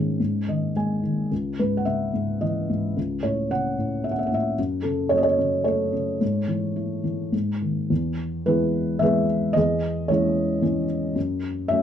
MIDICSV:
0, 0, Header, 1, 2, 480
1, 0, Start_track
1, 0, Key_signature, 4, "minor"
1, 0, Tempo, 557103
1, 1132, Time_signature, 3, 2, 24, 8
1, 2088, Tempo, 542495
1, 5928, Tempo, 564972
1, 7848, Tempo, 536673
1, 10354, End_track
2, 0, Start_track
2, 0, Title_t, "Felt piano"
2, 0, Program_c, 0, 0
2, 0, Control_c, 0, 64, 127
2, 0, Note_on_c, 0, 44, 45
2, 0, Note_on_c, 0, 51, 33
2, 0, Note_on_c, 0, 61, 44
2, 0, Note_on_c, 0, 68, 61
2, 155, Note_off_c, 0, 44, 0
2, 165, Note_off_c, 0, 51, 0
2, 171, Note_on_c, 0, 44, 41
2, 179, Control_c, 0, 64, 0
2, 339, Control_c, 0, 64, 127
2, 417, Note_on_c, 0, 51, 36
2, 419, Note_on_c, 0, 75, 44
2, 613, Note_off_c, 0, 68, 0
2, 623, Note_off_c, 0, 61, 0
2, 640, Note_off_c, 0, 75, 0
2, 655, Note_on_c, 0, 56, 35
2, 660, Note_on_c, 0, 80, 45
2, 877, Note_off_c, 0, 51, 0
2, 890, Note_on_c, 0, 51, 32
2, 1103, Note_off_c, 0, 80, 0
2, 1104, Note_off_c, 0, 44, 0
2, 1119, Note_off_c, 0, 56, 0
2, 1123, Note_off_c, 0, 51, 0
2, 1132, Note_on_c, 0, 37, 40
2, 1143, Control_c, 0, 64, 0
2, 1300, Control_c, 0, 64, 127
2, 1373, Note_on_c, 0, 71, 54
2, 1374, Note_on_c, 0, 44, 33
2, 1527, Note_on_c, 0, 78, 52
2, 1556, Note_off_c, 0, 71, 0
2, 1597, Note_on_c, 0, 76, 64
2, 1598, Note_off_c, 0, 78, 0
2, 1609, Note_on_c, 0, 49, 37
2, 1827, Note_off_c, 0, 44, 0
2, 1840, Note_on_c, 0, 44, 35
2, 2076, Note_on_c, 0, 75, 54
2, 2081, Note_on_c, 0, 52, 38
2, 2097, Note_off_c, 0, 76, 0
2, 2317, Note_off_c, 0, 44, 0
2, 2330, Note_on_c, 0, 44, 34
2, 2532, Note_off_c, 0, 75, 0
2, 2538, Note_off_c, 0, 37, 0
2, 2543, Note_off_c, 0, 49, 0
2, 2554, Note_off_c, 0, 52, 0
2, 2564, Note_off_c, 0, 44, 0
2, 2571, Note_on_c, 0, 37, 47
2, 2582, Control_c, 0, 64, 0
2, 2747, Control_c, 0, 64, 127
2, 2800, Note_on_c, 0, 73, 55
2, 2804, Note_on_c, 0, 45, 38
2, 3045, Note_on_c, 0, 49, 41
2, 3049, Note_on_c, 0, 78, 72
2, 3050, Note_off_c, 0, 73, 0
2, 3275, Note_off_c, 0, 45, 0
2, 3289, Note_on_c, 0, 45, 36
2, 3519, Note_on_c, 0, 76, 51
2, 3521, Note_on_c, 0, 61, 43
2, 3536, Note_off_c, 0, 78, 0
2, 3584, Note_on_c, 0, 78, 54
2, 3588, Note_off_c, 0, 76, 0
2, 3648, Note_on_c, 0, 76, 51
2, 3654, Note_off_c, 0, 78, 0
2, 3717, Note_on_c, 0, 78, 46
2, 3721, Note_off_c, 0, 76, 0
2, 3749, Note_off_c, 0, 45, 0
2, 3762, Note_on_c, 0, 45, 37
2, 3785, Note_on_c, 0, 76, 65
2, 3789, Note_off_c, 0, 78, 0
2, 3960, Note_off_c, 0, 37, 0
2, 3966, Note_off_c, 0, 49, 0
2, 3978, Note_off_c, 0, 76, 0
2, 3982, Note_off_c, 0, 61, 0
2, 3991, Note_off_c, 0, 45, 0
2, 4000, Note_on_c, 0, 42, 50
2, 4007, Control_c, 0, 64, 0
2, 4177, Control_c, 0, 64, 127
2, 4214, Note_on_c, 0, 69, 63
2, 4227, Note_on_c, 0, 49, 39
2, 4450, Note_on_c, 0, 73, 77
2, 4472, Note_off_c, 0, 69, 0
2, 4473, Note_on_c, 0, 54, 43
2, 4523, Note_on_c, 0, 75, 67
2, 4525, Note_off_c, 0, 73, 0
2, 4570, Note_on_c, 0, 73, 77
2, 4589, Note_off_c, 0, 75, 0
2, 4692, Note_off_c, 0, 49, 0
2, 4705, Note_on_c, 0, 49, 42
2, 4924, Note_off_c, 0, 73, 0
2, 4937, Note_on_c, 0, 73, 72
2, 4940, Note_on_c, 0, 57, 47
2, 4966, Note_on_c, 0, 69, 52
2, 5176, Note_off_c, 0, 49, 0
2, 5189, Note_on_c, 0, 49, 40
2, 5408, Note_off_c, 0, 42, 0
2, 5411, Note_off_c, 0, 54, 0
2, 5419, Note_off_c, 0, 57, 0
2, 5429, Note_off_c, 0, 49, 0
2, 5437, Note_on_c, 0, 44, 44
2, 5454, Control_c, 0, 64, 0
2, 5603, Control_c, 0, 64, 127
2, 5675, Note_on_c, 0, 52, 34
2, 5925, Note_on_c, 0, 64, 35
2, 6149, Note_off_c, 0, 52, 0
2, 6162, Note_on_c, 0, 52, 37
2, 6366, Note_off_c, 0, 73, 0
2, 6379, Note_off_c, 0, 44, 0
2, 6380, Note_off_c, 0, 69, 0
2, 6394, Note_off_c, 0, 64, 0
2, 6400, Note_off_c, 0, 52, 0
2, 6404, Note_on_c, 0, 44, 49
2, 6422, Control_c, 0, 64, 0
2, 6553, Control_c, 0, 64, 127
2, 6655, Note_on_c, 0, 51, 32
2, 6881, Note_off_c, 0, 44, 0
2, 6890, Note_off_c, 0, 51, 0
2, 6895, Note_on_c, 0, 40, 53
2, 6909, Control_c, 0, 64, 0
2, 7071, Control_c, 0, 64, 127
2, 7369, Note_on_c, 0, 71, 73
2, 7371, Note_on_c, 0, 52, 40
2, 7376, Note_on_c, 0, 56, 34
2, 7381, Note_on_c, 0, 59, 42
2, 7389, Note_on_c, 0, 68, 49
2, 7390, Note_on_c, 0, 64, 49
2, 7821, Note_on_c, 0, 76, 89
2, 7823, Note_off_c, 0, 52, 0
2, 7830, Note_off_c, 0, 56, 0
2, 7831, Note_off_c, 0, 59, 0
2, 7835, Note_off_c, 0, 68, 0
2, 7836, Note_on_c, 0, 52, 42
2, 7837, Note_off_c, 0, 71, 0
2, 7843, Note_on_c, 0, 56, 41
2, 7844, Note_on_c, 0, 59, 49
2, 7848, Note_on_c, 0, 68, 61
2, 7850, Note_on_c, 0, 71, 60
2, 8059, Note_off_c, 0, 64, 0
2, 8293, Note_off_c, 0, 40, 0
2, 8296, Note_off_c, 0, 68, 0
2, 8297, Note_off_c, 0, 71, 0
2, 8302, Note_on_c, 0, 75, 94
2, 8309, Note_off_c, 0, 52, 0
2, 8313, Note_off_c, 0, 56, 0
2, 8313, Note_off_c, 0, 59, 0
2, 8328, Note_on_c, 0, 40, 54
2, 8330, Note_on_c, 0, 68, 67
2, 8331, Note_off_c, 0, 76, 0
2, 8340, Control_c, 0, 64, 0
2, 8517, Control_c, 0, 64, 127
2, 8795, Note_on_c, 0, 73, 70
2, 8808, Note_on_c, 0, 52, 39
2, 8809, Note_off_c, 0, 75, 0
2, 8813, Note_off_c, 0, 68, 0
2, 8813, Note_on_c, 0, 61, 44
2, 8817, Note_on_c, 0, 56, 41
2, 8822, Note_on_c, 0, 64, 52
2, 8826, Note_on_c, 0, 68, 47
2, 9263, Note_off_c, 0, 52, 0
2, 9269, Note_off_c, 0, 61, 0
2, 9271, Note_off_c, 0, 56, 0
2, 9276, Note_on_c, 0, 52, 45
2, 9283, Note_on_c, 0, 61, 49
2, 9284, Note_on_c, 0, 56, 42
2, 9476, Note_off_c, 0, 73, 0
2, 9489, Note_off_c, 0, 64, 0
2, 9491, Note_off_c, 0, 68, 0
2, 9722, Note_off_c, 0, 40, 0
2, 9742, Note_off_c, 0, 52, 0
2, 9745, Note_off_c, 0, 61, 0
2, 9746, Note_off_c, 0, 56, 0
2, 9755, Note_on_c, 0, 42, 58
2, 9772, Control_c, 0, 64, 0
2, 9953, Control_c, 0, 64, 127
2, 10228, Note_on_c, 0, 76, 89
2, 10251, Note_on_c, 0, 54, 46
2, 10253, Note_on_c, 0, 57, 41
2, 10256, Note_on_c, 0, 61, 54
2, 10354, Note_off_c, 0, 42, 0
2, 10354, Note_off_c, 0, 54, 0
2, 10354, Note_off_c, 0, 57, 0
2, 10354, Note_off_c, 0, 61, 0
2, 10354, Note_off_c, 0, 76, 0
2, 10354, End_track
0, 0, End_of_file